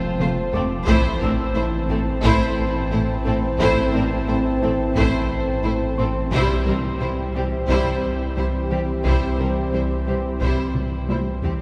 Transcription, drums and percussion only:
0.19 taiko mid
0.54 taiko low
0.87 taiko
2.24 taiko
3.59 taiko
4.96 taiko
6.32 taiko
7.69 taiko
9.05 taiko
10.41 taiko
10.75 taiko mid
11.09 taiko high
11.43 taiko low

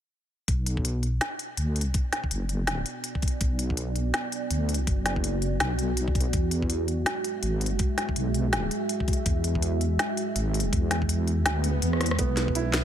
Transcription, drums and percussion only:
0.48 kick, closed hi-hat
0.66 closed hi-hat
0.77 kick
0.85 closed hi-hat
1.03 closed hi-hat
1.21 snare, closed hi-hat
1.39 closed hi-hat
1.57 closed hi-hat
1.76 closed hi-hat
1.81 closed hi-hat
1.94 kick, closed hi-hat
2.13 snare, closed hi-hat
2.24 kick
2.31 closed hi-hat
2.49 closed hi-hat
2.67 snare, closed hi-hat
2.86 closed hi-hat
3.04 closed hi-hat
3.15 kick
3.22 kick, closed hi-hat
3.28 closed hi-hat
3.41 kick, closed hi-hat
3.59 closed hi-hat
3.70 kick
3.77 closed hi-hat
3.96 closed hi-hat
4.14 snare, closed hi-hat
4.32 closed hi-hat
4.51 closed hi-hat
4.69 closed hi-hat
4.74 closed hi-hat
4.87 kick, closed hi-hat
5.06 snare, closed hi-hat
5.16 kick
5.24 closed hi-hat
5.42 closed hi-hat
5.60 snare, closed hi-hat
5.79 closed hi-hat
5.97 closed hi-hat
6.08 kick
6.15 kick, closed hi-hat
6.21 closed hi-hat
6.33 kick, closed hi-hat
6.51 closed hi-hat
6.62 kick
6.70 closed hi-hat
6.88 closed hi-hat
7.06 snare, closed hi-hat
7.24 closed hi-hat
7.43 closed hi-hat
7.61 closed hi-hat
7.66 closed hi-hat
7.79 kick, closed hi-hat
7.98 snare, closed hi-hat
8.09 kick
8.16 closed hi-hat
8.34 closed hi-hat
8.53 snare, closed hi-hat
8.71 closed hi-hat
8.89 closed hi-hat
9.00 kick
9.08 kick, closed hi-hat
9.13 closed hi-hat
9.26 kick, closed hi-hat
9.44 closed hi-hat
9.55 kick
9.62 closed hi-hat
9.81 closed hi-hat
9.99 snare, closed hi-hat
10.17 closed hi-hat
10.36 closed hi-hat
10.54 closed hi-hat
10.60 closed hi-hat
10.73 kick, closed hi-hat
10.91 snare, closed hi-hat
11.02 kick
11.09 closed hi-hat
11.28 closed hi-hat
11.46 snare, closed hi-hat
11.64 closed hi-hat
11.82 closed hi-hat
11.93 cross-stick
12.01 cross-stick, closed hi-hat
12.06 closed hi-hat
12.11 cross-stick
12.19 kick, closed hi-hat
12.37 snare, closed hi-hat
12.48 kick
12.55 closed hi-hat
12.73 snare, closed hi-hat, shaker

